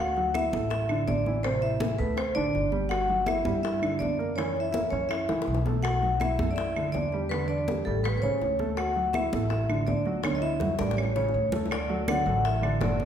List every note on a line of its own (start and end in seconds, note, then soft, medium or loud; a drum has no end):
0.00 0.49 D2 medium
0.00 0.32 F#4 medium
0.00 0.36 F#5 medium
0.16 0.47 F#3 medium
0.16 0.47 F#4 medium
0.16 high bongo soft
0.16 high conga soft
0.34 0.68 E4 medium
0.34 0.69 E5 medium
0.34 high bongo medium
0.34 high conga medium
0.34 claves medium
0.53 1.04 A1 medium
0.53 0.83 A3 medium
0.53 0.83 A4 medium
0.53 high conga medium
0.71 1.05 E4 medium
0.71 1.09 E5 medium
0.71 high bongo medium
0.71 high conga soft
0.89 1.20 D3 medium
0.89 1.20 D4 medium
0.89 high bongo soft
0.89 high conga soft
0.89 claves medium
1.07 1.94 A1 medium
1.07 1.42 D4 medium
1.07 1.45 D5 medium
1.07 high bongo soft
1.07 low bongo medium
1.07 high conga medium
1.26 1.42 E3 medium
1.26 1.42 E4 medium
1.26 high bongo soft
1.26 high conga medium
1.43 1.74 C3 medium
1.43 1.52 C4 medium
1.43 1.75 C4 medium
1.43 1.52 C5 medium
1.43 high bongo medium
1.43 high conga soft
1.43 claves medium
1.62 1.96 E4 medium
1.62 1.97 E5 medium
1.62 high bongo soft
1.62 high conga soft
1.80 1.96 E3 medium
1.80 1.96 E4 medium
1.80 high bongo medium
1.80 high conga loud
1.99 2.33 D2 medium
1.99 2.29 A3 medium
1.99 2.16 B3 medium
1.99 2.29 A4 medium
1.99 2.18 B4 medium
1.99 high conga soft
2.16 2.25 C4 medium
2.16 2.26 C5 medium
2.16 high bongo medium
2.16 high conga soft
2.16 claves medium
2.35 2.53 A1 medium
2.35 2.66 D3 medium
2.35 2.70 D4 medium
2.35 2.66 D4 medium
2.35 2.70 D5 loud
2.35 high bongo soft
2.35 high conga soft
2.54 3.41 G1 medium
2.54 high bongo soft
2.54 low bongo medium
2.54 high conga soft
2.72 3.03 G3 medium
2.72 3.03 G4 medium
2.72 high bongo soft
2.72 high conga medium
2.89 3.24 F#4 medium
2.89 3.24 F#5 medium
2.89 high bongo medium
2.89 high conga soft
2.89 claves medium
3.09 3.39 F#3 medium
3.09 3.40 F#4 medium
3.09 high bongo soft
3.09 high conga soft
3.26 3.61 E4 medium
3.26 3.61 E5 medium
3.26 high bongo medium
3.26 high conga loud
3.26 claves medium
3.45 3.97 G2 medium
3.45 3.76 G3 medium
3.45 3.76 G4 medium
3.45 high conga medium
3.63 3.98 E4 medium
3.63 4.02 E5 medium
3.63 high bongo medium
3.63 high conga soft
3.82 4.12 D3 medium
3.82 4.13 D4 medium
3.82 high bongo soft
3.82 high conga soft
3.82 claves medium
3.99 4.87 F#2 medium
3.99 4.34 D4 medium
3.99 4.38 D5 medium
3.99 high bongo soft
3.99 low bongo medium
3.99 high conga medium
4.19 4.34 A#3 medium
4.19 4.34 A#4 medium
4.19 high bongo soft
4.36 4.68 E3 medium
4.36 4.59 C#4 medium
4.36 4.68 E4 medium
4.36 4.62 C#5 medium
4.36 high bongo medium
4.36 high conga soft
4.36 claves medium
4.56 high bongo soft
4.56 high conga soft
4.60 4.71 E4 medium
4.60 4.71 E5 medium
4.71 4.90 A#3 medium
4.71 4.80 E4 medium
4.71 4.90 A#4 medium
4.71 4.81 E5 medium
4.71 high bongo medium
4.71 high conga medium
4.89 5.26 F#2 medium
4.89 4.98 C#4 medium
4.89 5.23 C#4 medium
4.89 4.99 C#5 medium
4.89 5.23 C#5 medium
4.89 high conga soft
5.08 5.61 E4 medium
5.08 5.61 E5 medium
5.08 high bongo medium
5.08 high conga soft
5.08 claves medium
5.28 5.46 C#2 medium
5.28 5.59 E3 medium
5.28 5.59 E4 medium
5.28 high bongo loud
5.28 high conga soft
5.42 high bongo medium
5.47 6.33 B1 medium
5.47 high conga soft
5.54 low bongo loud
5.66 5.96 A3 medium
5.66 5.96 A4 medium
5.66 low bongo medium
5.66 high conga medium
5.83 6.18 F#4 medium
5.83 6.21 F#5 medium
5.83 high bongo medium
5.83 high conga soft
5.83 claves medium
6.02 6.33 F#3 medium
6.02 6.33 F#4 medium
6.02 high bongo soft
6.02 high conga soft
6.19 6.47 E4 medium
6.19 6.51 E5 medium
6.19 high bongo medium
6.19 high conga medium
6.19 claves medium
6.39 6.91 F#2 medium
6.39 6.70 A3 medium
6.39 6.70 A4 medium
6.39 high conga medium
6.50 6.55 D4 medium
6.50 6.58 D5 medium
6.55 6.91 E4 medium
6.55 6.95 E5 medium
6.55 high bongo medium
6.55 high conga soft
6.76 7.06 D3 medium
6.76 7.07 D4 medium
6.76 high bongo soft
6.76 high conga soft
6.76 claves medium
6.92 7.80 E2 medium
6.92 7.28 D4 medium
6.92 7.31 D5 medium
6.92 high bongo soft
6.92 low bongo medium
6.92 high conga medium
7.12 7.28 G3 medium
7.12 7.28 G4 medium
7.12 high bongo soft
7.29 7.62 D3 medium
7.29 7.47 B3 medium
7.29 7.62 D4 medium
7.29 7.47 B4 medium
7.29 high bongo medium
7.29 high conga soft
7.29 claves medium
7.48 7.83 D4 medium
7.48 7.87 D5 medium
7.48 high bongo soft
7.48 high conga soft
7.68 7.84 G3 medium
7.68 7.84 G4 medium
7.68 high bongo medium
7.68 high conga medium
7.85 8.21 A1 medium
7.85 8.17 G3 medium
7.85 8.02 A3 medium
7.85 8.17 G4 medium
7.85 8.05 A4 medium
7.85 high conga soft
8.03 8.08 B3 medium
8.03 8.09 B4 medium
8.03 high bongo medium
8.03 high conga soft
8.03 claves medium
8.17 8.21 C4 soft
8.17 8.24 C5 medium
8.21 8.40 C#2 medium
8.21 8.53 C#3 medium
8.21 8.56 C#4 medium
8.21 8.53 C#4 medium
8.21 8.56 C#5 medium
8.21 high bongo soft
8.21 high conga soft
8.41 9.27 D2 medium
8.41 high bongo soft
8.41 low bongo medium
8.41 high conga soft
8.59 8.90 A3 medium
8.59 8.90 A4 medium
8.59 high bongo soft
8.59 high conga medium
8.77 9.12 F#4 medium
8.77 9.15 F#5 medium
8.77 high bongo medium
8.77 high conga soft
8.77 claves medium
8.95 9.26 F#3 medium
8.95 9.27 F#4 medium
8.95 high bongo soft
8.95 high conga soft
9.13 9.48 E4 medium
9.13 9.48 E5 medium
9.13 high bongo medium
9.13 high conga medium
9.13 claves medium
9.33 9.84 A1 medium
9.33 9.63 A3 medium
9.33 9.63 A4 medium
9.33 high conga loud
9.50 9.85 E4 medium
9.50 9.89 E5 medium
9.50 high bongo medium
9.50 high conga soft
9.69 10.00 D3 medium
9.69 10.00 D4 medium
9.69 high bongo soft
9.69 high conga soft
9.69 claves medium
9.87 10.74 D2 medium
9.87 10.21 D4 medium
9.87 10.21 D5 medium
9.87 high bongo soft
9.87 low bongo medium
9.87 high conga medium
10.06 10.21 F#3 medium
10.06 10.22 F#4 medium
10.06 high bongo soft
10.23 10.54 D3 medium
10.23 10.29 C#4 medium
10.23 10.55 D4 medium
10.23 10.29 C#5 medium
10.23 high bongo medium
10.23 high conga loud
10.23 claves medium
10.35 10.41 D#4 soft
10.35 10.43 D#5 medium
10.41 10.76 E4 medium
10.41 10.80 E5 medium
10.41 high bongo soft
10.60 10.76 F#3 medium
10.60 10.76 F#4 medium
10.60 high bongo medium
10.60 low conga loud
10.78 11.31 A1 medium
10.78 11.10 G3 medium
10.78 10.96 D4 medium
10.78 11.10 G4 medium
10.78 10.96 D5 medium
10.78 high bongo medium
10.78 low conga medium
10.91 high bongo medium
10.97 11.14 C#4 medium
10.97 11.15 C#5 medium
10.97 claves medium
11.03 low bongo medium
11.15 11.46 C#3 medium
11.15 11.49 C#4 medium
11.15 11.47 C#4 medium
11.15 11.50 C#5 medium
11.15 low bongo medium
11.28 low bongo medium
11.34 12.20 D2 medium
11.52 11.68 A3 medium
11.52 11.68 A4 medium
11.52 low bongo medium
11.52 low conga loud
11.66 low bongo medium
11.71 12.06 D3 medium
11.71 12.06 D5 medium
11.71 high bongo medium
11.71 high conga soft
11.71 claves medium
11.89 12.04 F#3 medium
11.89 12.04 F#4 medium
11.89 12.05 A4 medium
11.89 high conga soft
12.08 12.23 D3 medium
12.08 12.42 F#3 medium
12.08 12.23 D4 medium
12.08 12.24 D5 medium
12.08 12.46 F#5 loud
12.08 high bongo medium
12.08 high conga loud
12.08 claves medium
12.26 12.77 A1 medium
12.26 12.56 F#3 medium
12.26 12.56 F#4 medium
12.26 12.57 A4 medium
12.26 high conga soft
12.44 12.79 E3 medium
12.44 12.79 E5 medium
12.44 high bongo medium
12.44 high conga soft
12.62 12.78 D3 medium
12.62 12.78 D4 medium
12.62 12.78 D5 medium
12.62 high conga soft
12.62 claves medium
12.81 13.05 F#1 medium
12.81 13.05 D3 medium
12.81 13.05 F#3 medium
12.81 13.05 F#4 medium
12.81 13.05 A4 medium
12.81 13.05 D5 medium
12.81 high bongo medium
12.81 low bongo medium
12.81 high conga medium
13.00 high conga medium